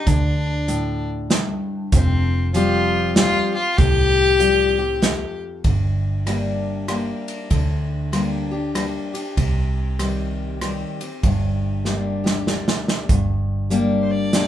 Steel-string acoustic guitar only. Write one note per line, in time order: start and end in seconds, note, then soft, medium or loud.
0.07 1.26 D3 medium
0.68 1.28 A2 medium
1.30 1.90 G2 medium
1.93 3.12 F2 loud
2.54 3.14 F3 medium
2.54 3.15 G3 medium
2.54 3.15 C4 loud
2.54 3.15 G4 loud
3.16 3.54 F3 medium
3.16 3.55 G3 medium
3.16 3.55 C4 medium
3.16 3.54 G4 loud
3.55 3.78 C4 soft
3.55 3.77 G4 medium
3.78 4.98 A2 medium
4.39 4.78 F3 medium
4.39 4.78 G3 medium
4.39 4.78 C4 medium
4.39 4.77 G4 medium
4.78 5.02 C4 soft
4.78 5.01 G4 medium
5.02 5.62 F2 medium
5.64 6.84 G2 medium
6.26 6.86 G3 soft
6.26 6.86 A#3 soft
6.26 6.87 D4 medium
6.26 6.87 G4 medium
6.88 7.48 G3 medium
6.88 7.48 A#3 medium
6.88 7.49 D4 medium
6.88 7.49 G4 medium
7.50 8.70 D3 medium
8.12 8.50 G3 soft
8.12 8.51 A#3 soft
8.12 8.51 D4 soft
8.12 8.50 G4 medium
8.51 8.75 D4 soft
8.51 8.74 G4 medium
8.75 9.13 G3 medium
8.75 9.13 A#3 soft
8.75 9.13 D4 medium
8.75 9.12 G4 medium
9.14 9.37 D4 soft
9.14 9.36 G4 medium
9.37 10.57 C3 medium
9.99 10.59 D#3 medium
9.99 10.59 G3 soft
9.99 10.60 C4 medium
9.99 10.60 G4 medium
10.61 10.99 D#3 medium
10.61 10.99 G3 medium
10.61 11.00 C4 medium
10.61 10.99 G4 medium
11.00 11.23 C4 soft
11.00 11.23 G4 soft
11.24 12.43 G2 medium
11.85 12.23 G3 medium
11.85 12.23 A#3 medium
11.85 12.24 D4 medium
11.85 12.23 G4 medium
12.24 12.47 D4 soft
12.24 12.46 G4 soft
12.47 13.07 G3 medium
12.47 13.07 A#3 medium
12.47 13.08 D4 medium
12.47 13.08 G4 medium
13.09 14.29 G2 medium
13.70 14.31 G3 medium
13.70 14.31 A#3 medium
13.70 14.31 D4 medium
13.70 14.32 G4 medium
14.33 14.47 G3 medium
14.33 14.47 A#3 medium
14.33 14.47 D4 medium
14.33 14.47 G4 medium